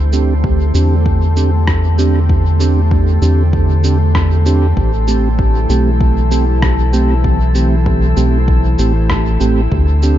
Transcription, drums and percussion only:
0.13 cabasa
0.44 kick
0.75 cabasa
1.06 kick
1.37 cabasa
1.67 kick, cross-stick
1.99 cabasa
2.29 kick
2.60 cabasa
2.91 kick
3.22 cabasa
3.53 kick
3.84 cabasa
4.15 kick, cross-stick
4.46 cabasa
4.77 kick
5.08 cabasa
5.39 kick
5.70 cabasa
6.01 kick
6.32 cabasa
6.62 kick, cross-stick
6.93 cabasa
7.24 kick
7.55 cabasa
7.86 kick
8.17 cabasa
8.48 kick
8.79 cabasa
9.10 kick, cross-stick
9.41 cabasa
9.72 kick
10.03 cabasa

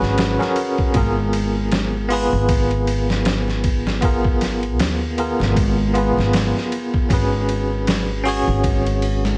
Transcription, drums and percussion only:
0.02 snare
0.18 snare, ride
0.41 snare
0.56 ride
0.78 kick
0.94 kick, ride
1.33 ride
1.71 snare, ride
2.10 open hi-hat
2.49 kick, ride
2.71 ride
2.87 ride
3.10 snare
3.25 snare, ride
3.48 snare
3.64 kick, ride
3.87 snare
4.02 kick, ride
4.25 kick
4.41 snare, ride
4.63 ride
4.80 snare, ride
5.18 ride
5.41 snare
5.56 kick, ride
5.95 ride
6.19 snare
6.33 snare, ride
6.57 snare
6.72 ride
6.94 kick
7.10 kick, ride
7.49 ride
7.87 snare, ride
8.26 open hi-hat
8.64 kick, ride
8.86 ride
9.02 ride
9.25 snare

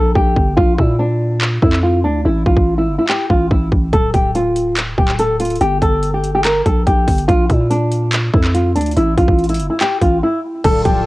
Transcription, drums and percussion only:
0.15 kick
0.36 kick
0.57 kick
0.78 kick
1.41 clap
1.62 kick
1.73 clap
2.46 kick
2.57 kick
3.09 clap
3.30 kick
3.51 kick
3.72 kick
3.93 kick, closed hi-hat
4.14 kick, closed hi-hat
4.35 closed hi-hat
4.56 closed hi-hat
4.77 clap, closed hi-hat
4.98 kick
5.08 clap
5.19 closed hi-hat
5.40 closed hi-hat
5.45 closed hi-hat
5.50 closed hi-hat
5.56 closed hi-hat
5.61 closed hi-hat
5.82 kick, closed hi-hat
6.03 closed hi-hat
6.24 closed hi-hat
6.45 clap, closed hi-hat
6.66 kick, closed hi-hat
6.87 kick, closed hi-hat
7.08 kick, closed hi-hat, open hi-hat
7.18 closed hi-hat
7.29 kick, closed hi-hat
7.50 kick, closed hi-hat
7.71 closed hi-hat
7.92 closed hi-hat
8.13 clap, closed hi-hat
8.34 kick
8.44 clap
8.55 closed hi-hat
8.76 closed hi-hat
8.81 closed hi-hat
8.86 closed hi-hat
8.91 closed hi-hat
8.97 closed hi-hat
9.17 kick, closed hi-hat
9.28 kick
9.38 closed hi-hat
9.44 closed hi-hat
9.49 closed hi-hat
9.54 closed hi-hat
9.59 closed hi-hat
9.80 clap, closed hi-hat
10.01 kick, closed hi-hat
10.64 kick, closed hi-hat, crash
10.85 kick, closed hi-hat

